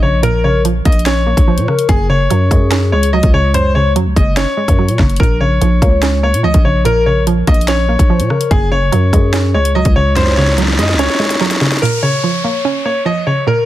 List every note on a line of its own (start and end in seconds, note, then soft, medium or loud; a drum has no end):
0.00 0.82 A#1 loud
0.00 0.43 C#3 medium
0.00 0.64 F3 medium
0.00 0.65 A#3 medium
0.00 0.44 C#4 loud
0.00 0.19 C#5 medium
0.23 1.26 A#2 loud
0.23 0.39 A#4 medium
0.23 0.62 A#4 loud
0.23 closed hi-hat medium
0.44 1.48 C#3 medium
0.44 0.60 C#5 medium
0.65 1.46 F3 medium
0.65 closed hi-hat medium
0.85 1.35 A#1 loud
0.85 1.25 A#3 medium
0.85 1.02 D#5 medium
0.85 kick loud
0.85 closed hi-hat medium
0.92 closed hi-hat medium
0.99 closed hi-hat medium
1.06 1.89 C#4 loud
1.06 1.85 C#5 medium
1.06 snare loud
1.06 closed hi-hat medium
1.27 1.89 A#3 medium
1.37 1.59 A#1 loud
1.37 kick medium
1.37 closed hi-hat medium
1.48 1.89 F3 medium
1.48 1.67 C5 medium
1.58 1.68 A#2 loud
1.58 closed hi-hat medium
1.68 1.89 C#3 medium
1.68 1.88 A#4 medium
1.68 cross-stick medium
1.79 closed hi-hat medium
1.89 2.29 F#1 loud
1.89 2.93 F#2 medium
1.89 2.05 G#4 loud
1.89 kick loud
1.89 closed hi-hat medium
2.10 3.13 C#3 medium
2.10 2.88 C#5 medium
2.30 2.50 F#2 loud
2.30 3.13 F#3 medium
2.30 closed hi-hat medium
2.51 2.94 F#2 loud
2.51 2.92 G#3 medium
2.51 3.09 G#4 medium
2.51 kick loud
2.51 closed hi-hat medium
2.71 3.75 C#4 loud
2.71 snare loud
2.71 closed hi-hat medium
2.92 3.22 C#2 loud
2.92 3.96 G#3 medium
2.92 3.08 C#5 medium
3.03 closed hi-hat medium
3.13 3.95 F#3 loud
3.13 3.29 D#5 medium
3.23 3.97 C#2 loud
3.23 kick loud
3.23 closed hi-hat medium
3.34 3.74 C#3 medium
3.34 3.50 C#5 medium
3.54 4.58 F#2 medium
3.54 3.70 C5 loud
3.54 3.93 C#5 loud
3.54 closed hi-hat medium
3.75 4.79 C#3 medium
3.75 3.91 C#5 medium
3.96 4.08 F#2 loud
3.96 4.77 F#3 medium
3.96 closed hi-hat medium
4.06 4.16 C#2 loud
4.16 4.46 F#1 loud
4.16 4.56 G#3 medium
4.16 4.32 D#5 medium
4.16 kick loud
4.16 closed hi-hat medium
4.37 5.20 C#4 loud
4.37 5.16 C#5 medium
4.37 snare loud
4.37 closed hi-hat medium
4.57 5.20 G#3 medium
4.68 4.90 F#2 loud
4.68 kick medium
4.68 closed hi-hat medium
4.79 5.20 F#3 medium
4.89 4.99 A#2 loud
4.89 closed hi-hat medium
4.99 5.19 F#1 loud
4.99 5.20 C#3 medium
4.99 kick medium
4.99 cross-stick medium
4.99 snare medium
5.10 closed hi-hat soft
5.16 5.60 A#1 loud
5.16 6.24 A#2 medium
5.16 5.36 A#4 medium
5.16 kick loud
5.16 closed hi-hat medium
5.23 closed hi-hat medium
5.40 6.44 C#3 medium
5.40 6.19 C#5 medium
5.61 5.81 A#1 loud
5.61 6.42 F3 medium
5.61 closed hi-hat medium
5.82 6.35 C#2 loud
5.82 6.22 A#3 medium
5.82 6.40 C#5 medium
5.82 kick loud
5.82 closed hi-hat medium
6.03 7.06 C#4 loud
6.03 snare loud
6.03 closed hi-hat medium
6.23 7.27 A#3 medium
6.23 6.39 C#5 medium
6.34 6.46 A#2 loud
6.34 closed hi-hat medium
6.43 6.54 C#2 loud
6.43 7.26 F3 medium
6.43 6.60 D#5 medium
6.54 7.44 A#1 loud
6.54 kick loud
6.54 closed hi-hat medium
6.65 7.05 C#3 medium
6.65 6.81 C#5 medium
6.85 7.89 A#2 loud
6.85 7.24 A#4 loud
6.85 7.02 A#4 loud
6.85 closed hi-hat medium
7.06 8.10 C#3 medium
7.06 7.22 C#5 medium
7.27 8.09 F3 medium
7.27 closed hi-hat medium
7.47 7.97 A#1 loud
7.47 7.88 A#3 medium
7.47 7.64 D#5 medium
7.47 kick medium
7.47 closed hi-hat medium
7.54 closed hi-hat medium
7.61 closed hi-hat medium
7.68 8.51 C#4 loud
7.68 8.47 C#5 medium
7.68 snare loud
7.68 closed hi-hat medium
7.89 8.51 A#3 medium
7.99 8.21 A#1 loud
7.99 kick loud
7.99 closed hi-hat medium
8.10 8.51 F3 medium
8.10 8.29 C5 medium
8.20 8.30 A#2 loud
8.20 closed hi-hat medium
8.30 8.51 C#3 medium
8.30 8.50 A#4 medium
8.30 cross-stick medium
8.41 closed hi-hat medium
8.51 8.91 F#1 loud
8.51 9.55 F#2 medium
8.51 8.67 G#4 loud
8.51 kick loud
8.51 closed hi-hat medium
8.71 9.75 C#3 medium
8.71 9.50 C#5 medium
8.92 9.12 F#2 loud
8.92 9.75 F#3 medium
8.92 closed hi-hat medium
9.13 9.56 F#2 loud
9.13 9.54 G#3 medium
9.13 9.71 G#4 medium
9.13 kick medium
9.13 closed hi-hat medium
9.33 10.37 C#4 loud
9.33 snare loud
9.33 closed hi-hat medium
9.54 9.84 C#2 loud
9.54 10.58 G#3 medium
9.54 9.70 C#5 medium
9.65 closed hi-hat medium
9.75 10.57 F#3 loud
9.75 9.91 D#5 medium
9.85 10.80 C#2 loud
9.85 kick medium
9.85 closed hi-hat medium
9.96 10.37 C#3 medium
9.96 10.12 C#5 medium
10.16 11.20 F#2 medium
10.16 10.32 C5 medium
10.16 10.55 C#5 loud
10.16 snare medium
10.16 closed hi-hat medium
10.22 snare medium
10.27 snare medium
10.32 snare medium
10.37 11.41 C#3 medium
10.37 10.53 C#5 medium
10.37 snare medium
10.42 snare medium
10.47 snare medium
10.53 snare medium
10.58 11.40 F#3 medium
10.58 snare medium
10.58 closed hi-hat medium
10.63 snare medium
10.68 snare medium
10.73 snare medium
10.78 10.95 F#2 loud
10.78 11.18 G#3 medium
10.78 10.95 D#5 medium
10.78 snare medium
10.78 closed hi-hat medium
10.84 snare medium
10.89 snare medium
10.94 11.09 C#2 loud
10.94 snare medium
10.99 11.82 C#4 loud
10.99 11.78 C#5 medium
10.99 snare medium
10.99 closed hi-hat medium
11.04 snare medium
11.10 snare medium
11.15 snare medium
11.19 11.82 G#3 medium
11.19 snare loud
11.25 snare medium
11.30 snare loud
11.30 closed hi-hat loud
11.35 snare medium
11.40 11.82 F#3 medium
11.40 snare loud
11.46 snare medium
11.51 snare loud
11.51 closed hi-hat medium
11.56 snare medium
11.61 11.82 C#3 medium
11.61 snare loud
11.66 snare medium
11.72 snare loud
11.72 closed hi-hat soft
11.77 snare loud
11.77 closed hi-hat medium
11.82 12.86 A#2 medium
11.82 11.98 A#4 medium
11.82 closed hi-hat medium
11.82 downlifter medium
12.03 13.06 C#3 medium
12.03 12.81 C#5 medium
12.24 13.04 F3 medium
12.44 12.84 A#3 medium
12.44 13.02 C#5 medium
12.65 13.65 C#4 loud
12.85 13.65 A#3 medium
12.85 13.01 C#5 medium
13.06 13.65 F3 medium
13.06 13.22 D#5 medium
13.27 13.65 C#3 medium
13.27 13.43 C#5 medium
13.47 13.65 A#2 loud
13.47 13.63 A#4 medium
13.47 13.65 A#4 loud